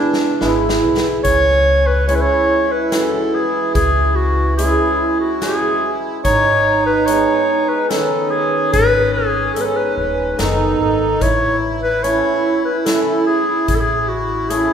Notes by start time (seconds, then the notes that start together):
Already playing: G#3 D4 E4
0.13 snare
0.41 G#1 G#3 B3 E4, snare
0.69 snare
0.83 B1
0.97 snare
1.24 C#2 C#4 C#5, kick, closed hi-hat
1.87 B4
2.08 G#3 C#4 E4 C#5, closed hi-hat
2.15 B4
2.22 C#5
2.72 B4
2.91 E3 C#4 F#4 A4, snare, closed hi-hat
3.35 G#4
3.75 C#2 G#4, kick, closed hi-hat
4.15 F#4
4.57 G#3 C#4 E4 G#4, closed hi-hat
5.20 F#4
5.42 G#3 C#4 F#4 G#4, snare, closed hi-hat
6.24 G#1 D#4 C#5, kick, closed hi-hat
6.86 B4
7.06 G#3 B3 D#4 C#5, closed hi-hat
7.69 B4
7.89 D#3 B3 C#4 D#4 A4, snare, closed hi-hat
8.31 G#4
8.73 G#1 B4, kick, closed hi-hat
9.13 G#4
9.54 G#3 B3 D#4 A4, closed hi-hat
9.61 B4
9.65 A4
9.76 B4
9.97 D#1 B4
10.38 F#1 D#3 B3 D#4 A4, snare, closed hi-hat
10.80 G#1 A4
11.21 A1 E4 C#5, kick, closed hi-hat
11.83 B4
12.04 A3 C#4 E4 C#5, closed hi-hat
12.65 B4
12.79 B4
12.85 A3 C#4 E4 A4, snare, closed hi-hat
13.26 G#4
13.68 A1 G#4, kick, closed hi-hat
13.75 A4
13.80 G#4
14.08 F#4
14.49 A3 C#4 E4 G#4, closed hi-hat